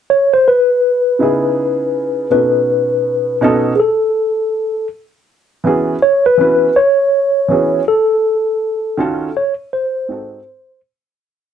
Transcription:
0.10 C#5
0.34 C5
0.48 B4
1.19 C#3 B3 D#4 E4 G#4
2.30 B2 C#4 D#4 F#4 A4 B4
3.41 B2 C#4 D#4 F#4 A4
3.76 G#4 A4
5.64 E3 B3 C#4 F#4 G#4
6.02 C#5
6.26 B4
6.37 E3 B3 C#4 F#4 B4
6.76 C#5
7.48 E3 B3 C#4 F#4 G#4
7.88 A4
8.97 D#3 C#4 F4 F#4 A4
9.37 C#5
9.73 C5
10.09 G#2 C4 D#4 F#4 A4

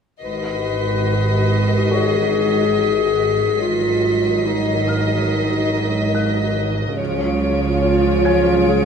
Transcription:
0.21 G#1 G#2 D#3 F#4 B4 D#5 B6 C7
1.91 G#4 C#5 C#6
3.61 G#1 G#2 D#3 F#3 F4 D#5
4.46 D#4
4.88 F6
6.15 F#6
6.97 C#2 C#3 F3 F4 C#5 D7
7.84 F4
8.25 G#5 G#6
8.69 G#4

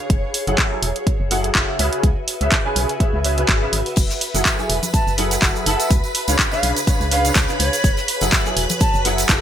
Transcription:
Already playing: G#4 C#5
0.10 F#1 F#4, kick, closed hi-hat
0.34 open hi-hat
0.47 F#1 F#3 E4 G#4 A4 F#5, closed hi-hat
0.53 B4
0.58 kick, clap, closed hi-hat
0.72 F#3 E4 G#4 A4 G#5
0.82 E1, open hi-hat
0.87 E5
0.96 closed hi-hat
1.07 kick, closed hi-hat
1.20 F#1
1.31 F#3 E4 G#4 A4 F#5, open hi-hat
1.44 closed hi-hat
1.55 F#1 C#3 E4 G#4 A4 F#5, kick, clap, closed hi-hat
1.79 C#2 C#3 C#4 G#4 B4 E5, open hi-hat
1.93 closed hi-hat
2.03 C#2, kick, closed hi-hat
2.28 open hi-hat
2.41 C#2 C#3 C#4 G#4 B4 E5, closed hi-hat
2.52 kick, clap, closed hi-hat
2.65 C#3 C#4 G#4 B4 G#5
2.76 B1, open hi-hat
2.89 closed hi-hat
3.00 C#3 C#4 G#4 B4 E5, kick, closed hi-hat
3.13 C#2
3.24 C#3 C#4 G#4 B4 E5, open hi-hat
3.38 C#3 C#4 G#4 B4 E5, closed hi-hat
3.49 G#1, kick, clap, closed hi-hat
3.62 C#3 C#4 G#4 B4 E5
3.73 G#1, open hi-hat
3.86 open hi-hat
3.96 F#1 B4 B5, kick, closed hi-hat, crash, tambourine, shaker
4.10 snare, tambourine, shaker
4.21 closed hi-hat, open hi-hat
4.34 F#1 F#3 E4 G#4 A4 F#5, closed hi-hat, tambourine, shaker
4.45 kick, snare, clap, closed hi-hat, tambourine, shaker
4.59 F#3 E4 G#4 A4 G#5, closed hi-hat, tambourine, shaker
4.70 E1, closed hi-hat, open hi-hat
4.83 closed hi-hat, tambourine, high conga, shaker
4.94 A5, kick, closed hi-hat, tambourine, shaker
5.07 F#1, tambourine, shaker
5.17 F#3 E4 G#4 A4 F#5, snare, closed hi-hat, open hi-hat
5.31 snare, closed hi-hat, tambourine, shaker
5.42 F#1 F#3 E4 G#4 A4 F#5, kick, snare, clap, closed hi-hat, tambourine, shaker
5.55 tambourine, shaker
5.66 F#1 E4 G#4 A4 F#5 A5, closed hi-hat, open hi-hat
5.80 closed hi-hat, tambourine, shaker
5.90 C#2 G#4, kick, closed hi-hat, tambourine, shaker
6.04 tambourine, shaker
6.15 closed hi-hat, open hi-hat
6.28 C#2 C#3 D4 B4 C#5 F5, closed hi-hat, tambourine, shaker
6.39 C#5, kick, snare, clap, closed hi-hat, shaker
6.51 C#3 D4 B4 C#5 F5 B5, snare, tambourine, shaker
6.63 B1, closed hi-hat, open hi-hat
6.76 closed hi-hat, tambourine, shaker
6.87 C#3 D4 B4 C#5 F5, kick, closed hi-hat, tambourine, shaker
7.01 C#2, tambourine, shaker
7.11 C#3 D4 B4 C#5 F5, snare, closed hi-hat, open hi-hat
7.25 C#3 D4 B4 C#5 F5, closed hi-hat, tambourine, shaker
7.35 C#2, kick, snare, clap, closed hi-hat, tambourine, shaker
7.48 C#3 D4 B4 C#5 F5, tambourine, shaker
7.60 C#2 C#5, snare, closed hi-hat, open hi-hat
7.73 closed hi-hat, tambourine, shaker
7.84 F#1 F#4, kick, closed hi-hat, tambourine, shaker
7.97 snare, tambourine, shaker
8.08 closed hi-hat, open hi-hat
8.21 F#1 F#3 E4 G#4 A4 B4 F#5, closed hi-hat, tambourine, shaker
8.31 kick, snare, clap, closed hi-hat, tambourine, shaker
8.46 F#3 E4 G#4 A4 G#5, closed hi-hat, tambourine, shaker
8.57 E1, closed hi-hat, open hi-hat
8.61 E5
8.70 closed hi-hat, tambourine, high conga, shaker
8.80 A5, kick, closed hi-hat, tambourine, shaker
8.94 F#1, tambourine, shaker
9.05 F#3 E4 G#4 A4 F#5, snare, closed hi-hat, open hi-hat
9.18 snare, closed hi-hat, tambourine, shaker
9.29 F#1 C#3 E4 G#4 A4 F#5, kick, snare, clap, closed hi-hat, tambourine, shaker

